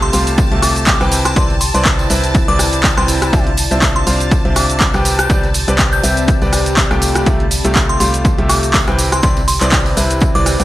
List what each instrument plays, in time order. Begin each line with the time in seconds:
Already playing: fm bass C2, grand piano C3 A3 F4 G4 E5, ambient pad G4 G5, string machine A5
0.02 ambient pad A5, synth bell C6, closed hi-hat
0.13 fm bass C2, grand piano C3 A3 F4 G4 F5, synth bell C6, open hi-hat, tambourine, shaker
0.27 closed hi-hat, tambourine, shaker
0.38 kick, closed hi-hat, tambourine, shaker
0.52 fm bass C2, grand piano C3 A3 F4 G4 E5, closed hi-hat
0.62 synth bell D6, cross-stick, open hi-hat, tambourine, shaker
0.76 closed hi-hat, tambourine, shaker
0.87 kick, clap, closed hi-hat, tambourine, shaker
1.01 fm bass C2, grand piano C3 C4 E4 B4 G5, cross-stick, closed hi-hat, tambourine
1.11 ambient pad E4, open hi-hat, tambourine, shaker
1.25 synth bell C6, cross-stick, closed hi-hat, tambourine, shaker
1.36 fm bass C2, grand piano C3 C4 E4 B4 D5, synth bell C6, kick, closed hi-hat, tambourine, shaker
1.50 closed hi-hat, tambourine
1.61 synth bell C6, open hi-hat, tambourine, shaker
1.74 fm bass C2, grand piano C3 C4 E4 B4 D5, synth bell C6, closed hi-hat, tambourine, shaker
1.85 kick, clap, closed hi-hat, tambourine, shaker
1.99 ambient pad D5, closed hi-hat, tambourine
2.10 fm bass C2, grand piano C3 C4 E4 B4 E5, open hi-hat, tambourine, shaker
2.23 closed hi-hat, tambourine, shaker
2.35 kick, closed hi-hat, tambourine, shaker
2.48 fm bass C2, grand piano C3 C4 E4 B4 D5, synth bell D6, closed hi-hat, tambourine
2.59 cross-stick, open hi-hat, tambourine, shaker
2.72 closed hi-hat, tambourine, shaker
2.83 kick, clap, closed hi-hat, tambourine, shaker
2.97 fm bass C2, grand piano C3 C4 E4 B4 G5, synth bell C6, cross-stick, closed hi-hat, tambourine
3.08 open hi-hat, tambourine, shaker
3.22 cross-stick, closed hi-hat, tambourine, shaker
3.33 fm bass C2, grand piano C3 D4 F4 C5 E5, ambient pad F4, kick, closed hi-hat, tambourine, shaker
3.47 closed hi-hat
3.57 open hi-hat, tambourine, shaker
3.71 fm bass C2, grand piano C3 D4 F4 C5 E5, closed hi-hat, tambourine, shaker
3.82 kick, clap, closed hi-hat, tambourine, shaker
3.96 synth bell C6, closed hi-hat
4.07 fm bass C2, grand piano C3 D4 F4 C5 F5, synth bell C6, open hi-hat, tambourine, shaker
4.20 closed hi-hat, tambourine, shaker
4.31 kick, closed hi-hat, tambourine, shaker
4.45 fm bass C2, grand piano C3 D4 F4 C5 E5, closed hi-hat
4.56 synth bell D6, cross-stick, open hi-hat, tambourine, shaker
4.70 closed hi-hat, tambourine, shaker
4.80 kick, clap, closed hi-hat, tambourine, shaker
4.94 fm bass C2, grand piano C3 C4 G4 B4 G5, cross-stick, closed hi-hat, tambourine
5.05 ambient pad C4, open hi-hat, tambourine, shaker
5.15 ambient pad G4, tambourine
5.19 synth bell G6, cross-stick, closed hi-hat, shaker
5.29 fm bass C2, grand piano C3 C4 G4 B4 D5, ambient pad D5, kick, closed hi-hat, tambourine, shaker
5.43 closed hi-hat, tambourine
5.54 open hi-hat, tambourine, shaker
5.68 fm bass C2, grand piano C3 C4 G4 B4 D5, closed hi-hat, tambourine, shaker
5.78 kick, clap, closed hi-hat, tambourine, shaker
5.92 ambient pad B5, synth bell G6, closed hi-hat, tambourine
6.03 fm bass C2, grand piano C3 C4 G4 B4 E5, open hi-hat, tambourine, shaker
6.17 closed hi-hat, tambourine, shaker
6.28 kick, closed hi-hat, tambourine, shaker
6.42 fm bass C2, grand piano C3 C4 G4 B4 D5, closed hi-hat, tambourine
6.53 cross-stick, open hi-hat, tambourine, shaker
6.66 closed hi-hat, tambourine, shaker
6.77 kick, clap, closed hi-hat, tambourine, shaker
6.91 fm bass C2, grand piano C3 A3 F4 G4 G5, cross-stick, closed hi-hat, tambourine
7.02 open hi-hat, tambourine, shaker
7.15 cross-stick, closed hi-hat, tambourine, shaker
7.26 fm bass C2, grand piano C3 A3 F4 G4 E5, kick, closed hi-hat, tambourine, shaker
7.40 closed hi-hat
7.51 open hi-hat, tambourine, shaker
7.65 fm bass C2, grand piano C3 A3 F4 G4 E5, closed hi-hat, tambourine, shaker
7.75 ambient pad G5, kick, clap, closed hi-hat, tambourine, shaker
7.89 ambient pad A5, synth bell C6, closed hi-hat
8.00 fm bass C2, grand piano C3 A3 F4 G4 F5, synth bell C6, open hi-hat, tambourine, shaker
8.14 closed hi-hat, shaker
8.25 kick, closed hi-hat, tambourine, shaker
8.38 fm bass C2, grand piano C3 A3 F4 G4 E5, closed hi-hat
8.49 synth bell D6, cross-stick, open hi-hat, tambourine, shaker
8.63 closed hi-hat, tambourine, shaker
8.74 kick, clap, closed hi-hat, tambourine, shaker
8.87 fm bass C2, grand piano C3 C4 E4 B4 G5, cross-stick, closed hi-hat, tambourine
8.99 ambient pad E4, open hi-hat, tambourine, shaker
9.12 synth bell C6, cross-stick, closed hi-hat, tambourine, shaker
9.23 fm bass C2, grand piano C3 C4 E4 B4 D5, synth bell C6, kick, closed hi-hat, tambourine, shaker
9.37 closed hi-hat, tambourine
9.48 synth bell C6, open hi-hat, tambourine, shaker
9.61 fm bass C2, grand piano C3 C4 E4 B4 D5, synth bell C6, clap, closed hi-hat, tambourine, shaker
9.72 kick, clap, closed hi-hat, tambourine, shaker
9.78 ambient pad D5
9.86 open hi-hat, tambourine
9.97 fm bass C2, grand piano C3 C4 E4 B4 E5, open hi-hat, tambourine, shaker
10.10 closed hi-hat, tambourine, shaker
10.20 kick, closed hi-hat, tambourine, shaker
10.35 fm bass C2, grand piano C3 C4 E4 B4 D5, synth bell D6, closed hi-hat, tambourine
10.46 cross-stick, open hi-hat, tambourine, shaker
10.60 fm bass C2, grand piano C3 C4 E4 B4 G5, closed hi-hat, tambourine, shaker